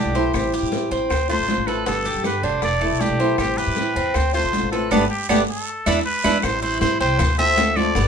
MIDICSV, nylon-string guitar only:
0, 0, Header, 1, 3, 480
1, 0, Start_track
1, 0, Key_signature, 0, "minor"
1, 0, Tempo, 380711
1, 429, Time_signature, 4, 2, 24, 8
1, 10183, End_track
2, 0, Start_track
2, 0, Title_t, "Nylon-string guitar"
2, 0, Program_c, 0, 24
2, 0, Note_on_c, 0, 50, 46
2, 0, Note_on_c, 0, 57, 45
2, 0, Note_on_c, 0, 59, 47
2, 0, Note_on_c, 0, 64, 48
2, 168, Note_off_c, 0, 64, 0
2, 178, Note_off_c, 0, 59, 0
2, 179, Note_off_c, 0, 50, 0
2, 183, Note_off_c, 0, 57, 0
2, 183, Note_on_c, 0, 64, 64
2, 193, Note_on_c, 0, 59, 65
2, 203, Note_on_c, 0, 57, 50
2, 416, Note_off_c, 0, 64, 0
2, 421, Note_off_c, 0, 59, 0
2, 426, Note_off_c, 0, 57, 0
2, 430, Note_on_c, 0, 52, 60
2, 435, Note_on_c, 0, 55, 64
2, 439, Note_on_c, 0, 60, 70
2, 446, Note_on_c, 0, 64, 72
2, 891, Note_off_c, 0, 52, 0
2, 898, Note_off_c, 0, 55, 0
2, 905, Note_off_c, 0, 60, 0
2, 906, Note_on_c, 0, 52, 51
2, 909, Note_off_c, 0, 64, 0
2, 913, Note_on_c, 0, 55, 50
2, 919, Note_on_c, 0, 60, 57
2, 922, Note_on_c, 0, 64, 54
2, 1374, Note_off_c, 0, 60, 0
2, 1379, Note_off_c, 0, 52, 0
2, 1382, Note_off_c, 0, 55, 0
2, 1387, Note_off_c, 0, 64, 0
2, 1621, Note_on_c, 0, 65, 67
2, 1632, Note_on_c, 0, 60, 54
2, 1639, Note_on_c, 0, 57, 53
2, 1856, Note_off_c, 0, 57, 0
2, 1857, Note_off_c, 0, 65, 0
2, 1862, Note_off_c, 0, 60, 0
2, 1864, Note_on_c, 0, 50, 47
2, 1872, Note_on_c, 0, 57, 46
2, 1877, Note_on_c, 0, 60, 52
2, 1884, Note_on_c, 0, 65, 51
2, 2090, Note_off_c, 0, 65, 0
2, 2097, Note_off_c, 0, 60, 0
2, 2098, Note_off_c, 0, 50, 0
2, 2102, Note_off_c, 0, 57, 0
2, 2105, Note_on_c, 0, 65, 69
2, 2113, Note_on_c, 0, 60, 57
2, 2124, Note_on_c, 0, 57, 51
2, 2339, Note_off_c, 0, 65, 0
2, 2342, Note_off_c, 0, 60, 0
2, 2345, Note_on_c, 0, 50, 68
2, 2348, Note_off_c, 0, 57, 0
2, 2353, Note_on_c, 0, 55, 66
2, 2357, Note_on_c, 0, 59, 68
2, 2365, Note_on_c, 0, 67, 71
2, 2809, Note_off_c, 0, 50, 0
2, 2816, Note_off_c, 0, 55, 0
2, 2822, Note_off_c, 0, 59, 0
2, 2824, Note_on_c, 0, 50, 51
2, 2829, Note_off_c, 0, 67, 0
2, 2831, Note_on_c, 0, 55, 54
2, 2837, Note_on_c, 0, 59, 52
2, 2842, Note_on_c, 0, 67, 56
2, 3295, Note_off_c, 0, 50, 0
2, 3302, Note_off_c, 0, 55, 0
2, 3302, Note_off_c, 0, 59, 0
2, 3308, Note_off_c, 0, 67, 0
2, 3547, Note_on_c, 0, 64, 65
2, 3559, Note_on_c, 0, 59, 61
2, 3568, Note_on_c, 0, 57, 59
2, 3780, Note_off_c, 0, 64, 0
2, 3782, Note_off_c, 0, 57, 0
2, 3786, Note_off_c, 0, 59, 0
2, 3790, Note_on_c, 0, 50, 42
2, 3797, Note_on_c, 0, 57, 52
2, 3802, Note_on_c, 0, 59, 47
2, 3807, Note_on_c, 0, 64, 54
2, 4017, Note_off_c, 0, 64, 0
2, 4022, Note_off_c, 0, 50, 0
2, 4026, Note_off_c, 0, 57, 0
2, 4028, Note_off_c, 0, 59, 0
2, 4032, Note_on_c, 0, 64, 61
2, 4042, Note_on_c, 0, 59, 56
2, 4050, Note_on_c, 0, 57, 55
2, 4263, Note_off_c, 0, 64, 0
2, 4266, Note_on_c, 0, 52, 59
2, 4268, Note_off_c, 0, 59, 0
2, 4269, Note_off_c, 0, 57, 0
2, 4274, Note_on_c, 0, 55, 66
2, 4280, Note_on_c, 0, 60, 73
2, 4285, Note_on_c, 0, 64, 72
2, 4740, Note_off_c, 0, 52, 0
2, 4744, Note_off_c, 0, 55, 0
2, 4747, Note_off_c, 0, 60, 0
2, 4750, Note_off_c, 0, 64, 0
2, 4760, Note_on_c, 0, 52, 53
2, 4765, Note_on_c, 0, 55, 56
2, 4767, Note_on_c, 0, 60, 52
2, 4774, Note_on_c, 0, 64, 52
2, 5224, Note_off_c, 0, 60, 0
2, 5227, Note_off_c, 0, 52, 0
2, 5230, Note_off_c, 0, 55, 0
2, 5234, Note_off_c, 0, 64, 0
2, 5476, Note_on_c, 0, 65, 61
2, 5484, Note_on_c, 0, 60, 62
2, 5494, Note_on_c, 0, 57, 57
2, 5705, Note_off_c, 0, 65, 0
2, 5710, Note_off_c, 0, 60, 0
2, 5712, Note_off_c, 0, 57, 0
2, 5718, Note_on_c, 0, 50, 51
2, 5727, Note_on_c, 0, 57, 48
2, 5732, Note_on_c, 0, 60, 49
2, 5736, Note_on_c, 0, 65, 49
2, 5941, Note_off_c, 0, 65, 0
2, 5946, Note_off_c, 0, 50, 0
2, 5951, Note_off_c, 0, 57, 0
2, 5954, Note_off_c, 0, 60, 0
2, 5956, Note_on_c, 0, 65, 64
2, 5967, Note_on_c, 0, 60, 63
2, 5974, Note_on_c, 0, 57, 50
2, 6186, Note_off_c, 0, 65, 0
2, 6188, Note_off_c, 0, 57, 0
2, 6191, Note_off_c, 0, 60, 0
2, 6200, Note_on_c, 0, 57, 85
2, 6206, Note_on_c, 0, 62, 85
2, 6213, Note_on_c, 0, 59, 84
2, 6353, Note_off_c, 0, 57, 0
2, 6354, Note_off_c, 0, 62, 0
2, 6355, Note_off_c, 0, 59, 0
2, 6680, Note_on_c, 0, 57, 92
2, 6687, Note_on_c, 0, 62, 96
2, 6691, Note_on_c, 0, 59, 96
2, 6834, Note_off_c, 0, 57, 0
2, 6834, Note_off_c, 0, 59, 0
2, 6834, Note_off_c, 0, 62, 0
2, 7394, Note_on_c, 0, 62, 91
2, 7398, Note_on_c, 0, 59, 93
2, 7401, Note_on_c, 0, 64, 92
2, 7548, Note_off_c, 0, 62, 0
2, 7549, Note_off_c, 0, 59, 0
2, 7549, Note_off_c, 0, 64, 0
2, 7870, Note_on_c, 0, 62, 88
2, 7876, Note_on_c, 0, 59, 85
2, 7882, Note_on_c, 0, 64, 88
2, 8027, Note_off_c, 0, 59, 0
2, 8027, Note_off_c, 0, 62, 0
2, 8027, Note_off_c, 0, 64, 0
2, 8108, Note_on_c, 0, 52, 65
2, 8115, Note_on_c, 0, 55, 63
2, 8120, Note_on_c, 0, 60, 74
2, 8125, Note_on_c, 0, 64, 74
2, 8568, Note_off_c, 0, 52, 0
2, 8576, Note_off_c, 0, 55, 0
2, 8583, Note_off_c, 0, 60, 0
2, 8583, Note_on_c, 0, 52, 52
2, 8586, Note_off_c, 0, 64, 0
2, 8591, Note_on_c, 0, 55, 51
2, 8598, Note_on_c, 0, 60, 54
2, 8602, Note_on_c, 0, 64, 54
2, 9058, Note_off_c, 0, 52, 0
2, 9062, Note_off_c, 0, 55, 0
2, 9063, Note_off_c, 0, 60, 0
2, 9067, Note_off_c, 0, 64, 0
2, 9308, Note_on_c, 0, 65, 66
2, 9320, Note_on_c, 0, 60, 67
2, 9328, Note_on_c, 0, 57, 62
2, 9541, Note_off_c, 0, 65, 0
2, 9545, Note_off_c, 0, 57, 0
2, 9546, Note_off_c, 0, 60, 0
2, 9555, Note_on_c, 0, 50, 47
2, 9560, Note_on_c, 0, 57, 49
2, 9567, Note_on_c, 0, 60, 53
2, 9569, Note_on_c, 0, 65, 54
2, 9777, Note_off_c, 0, 65, 0
2, 9784, Note_off_c, 0, 50, 0
2, 9786, Note_off_c, 0, 57, 0
2, 9790, Note_off_c, 0, 60, 0
2, 9792, Note_on_c, 0, 65, 67
2, 9805, Note_on_c, 0, 60, 63
2, 9813, Note_on_c, 0, 57, 55
2, 10022, Note_off_c, 0, 65, 0
2, 10029, Note_off_c, 0, 60, 0
2, 10030, Note_on_c, 0, 50, 67
2, 10031, Note_off_c, 0, 57, 0
2, 10036, Note_on_c, 0, 55, 74
2, 10042, Note_on_c, 0, 59, 69
2, 10046, Note_on_c, 0, 67, 78
2, 10183, Note_off_c, 0, 50, 0
2, 10183, Note_off_c, 0, 55, 0
2, 10183, Note_off_c, 0, 59, 0
2, 10183, Note_off_c, 0, 67, 0
2, 10183, End_track
3, 0, Start_track
3, 0, Title_t, "Muted nylon-string guitar strokes"
3, 1385, Note_on_c, 9, 29, 65
3, 1511, Note_off_c, 9, 29, 0
3, 3310, Note_on_c, 9, 29, 60
3, 3436, Note_off_c, 9, 29, 0
3, 5235, Note_on_c, 9, 29, 64
3, 5361, Note_off_c, 9, 29, 0
3, 9074, Note_on_c, 9, 29, 63
3, 9200, Note_off_c, 9, 29, 0
3, 10183, End_track
0, 0, End_of_file